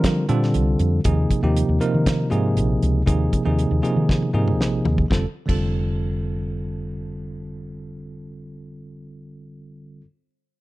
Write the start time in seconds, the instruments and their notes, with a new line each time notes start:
Already playing: tine electric piano D3 G3 C4 F4 A#4, fretless electric bass F3
0.04 kick, snare, closed hi-hat
0.28 fretless electric bass A#2, tine electric piano D3 G3 C4 F4 A4, closed hi-hat
0.43 snare
0.54 fretless electric bass C2, closed hi-hat
0.79 fretless electric bass F2, closed hi-hat
1.04 fretless electric bass D#2, tine electric piano C3 F3 A#3 D#4 G#4, kick, closed hi-hat
1.30 kick, closed hi-hat
1.43 fretless electric bass D#2, tine electric piano C3 F3 A#3 D#4 G4
1.56 closed hi-hat
1.69 fretless electric bass D#2
1.80 tine electric piano C3 F3 A#3 D#4 A#4, closed hi-hat
1.94 fretless electric bass D#3
2.06 kick, snare, closed hi-hat
2.30 fretless electric bass G#2, tine electric piano C3 F3 A#3 D#4 G#4, closed hi-hat
2.57 fretless electric bass A#1, closed hi-hat
2.83 fretless electric bass C#2, closed hi-hat
3.06 fretless electric bass D#2, tine electric piano C3 F3 A#3 D#4 G#4, kick, closed hi-hat
3.33 kick, closed hi-hat
3.45 fretless electric bass D#2, tine electric piano C3 F3 A#3 D#4 G#4
3.59 closed hi-hat
3.71 fretless electric bass D#2
3.83 tine electric piano C3 F3 A#3 D#4 G#4, closed hi-hat
3.96 fretless electric bass D#3
4.09 kick, snare
4.23 high tom
4.33 fretless electric bass G#2, tine electric piano C3 F3 A#3 D#4 G#4
4.48 mid tom
4.59 fretless electric bass A#1, snare
4.85 fretless electric bass D#2, floor tom
4.98 kick
5.08 fretless electric bass F1, tine electric piano D3 G3 C4 F4, kick, snare
5.12 tine electric piano A4
5.46 fretless electric bass F1, tine electric piano D3 G3 C4 F4 A4, kick, crash